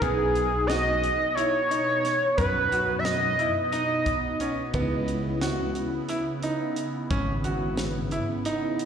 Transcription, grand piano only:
0.02 0.41 B3 medium
0.70 1.09 F#4 medium
1.37 1.56 E4 medium
1.71 2.10 D#4 medium
2.38 2.58 B3 medium
2.72 3.11 F#4 medium
3.39 3.59 E4 medium
3.73 4.12 D#4 medium
4.41 4.60 C#4 medium
4.75 5.14 B3 medium
5.42 5.81 F#4 medium
6.09 6.29 E4 medium
6.43 6.83 D#4 medium
7.10 7.30 C#4 medium
7.44 7.84 F#4 medium
8.12 8.32 E4 medium
8.46 8.85 D#4 medium

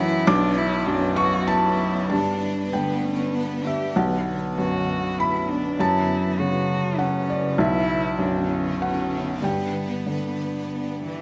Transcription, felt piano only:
0.00 0.24 F#2 loud
0.00 0.29 E3 medium
0.00 0.30 F#5 loud
0.00 0.30 A5 loud
0.27 2.06 B1 loud
0.27 1.13 D6 loud
0.87 2.10 F#2 medium
1.16 1.45 C#6 loud
1.48 2.06 A5 loud
2.10 3.93 G2 medium
2.10 2.69 A5 medium
2.73 3.97 D3 soft
2.73 3.62 G5 medium
3.67 3.95 E5 medium
3.96 5.75 B1 medium
3.96 5.16 F#5 medium
4.58 5.78 F#2 soft
5.20 5.76 B5 medium
5.80 7.55 F#2 medium
5.80 6.95 A5 medium
6.39 7.59 C#3 soft
6.99 7.27 F#5 medium
7.30 7.57 D5 medium
7.58 9.38 B1 medium
7.58 8.76 E5 medium
8.19 9.42 F#2 soft
8.82 9.39 F#5 medium
9.42 11.22 G2 medium
9.42 10.99 G5 medium
10.06 11.22 D3 soft

